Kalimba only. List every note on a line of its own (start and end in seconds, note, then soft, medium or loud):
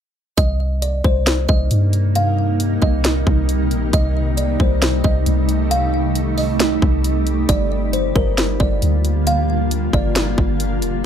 0.37 0.79 D#5 medium
0.82 1.03 D5 medium
1.05 1.46 C5 medium
1.49 1.70 D#5 medium
2.16 2.78 F5 loud
2.82 3.03 D#5 medium
3.94 4.35 D#5 medium
4.37 4.59 D5 medium
4.60 5.02 C5 medium
5.04 5.25 D#5 medium
5.71 6.34 F5 loud
6.38 7.00 D#5 medium
7.49 7.91 D5 loud
7.93 8.14 C5 medium
8.16 8.57 A#4 medium
8.60 8.81 D5 medium
9.27 9.89 F5 loud
9.94 10.15 D5 medium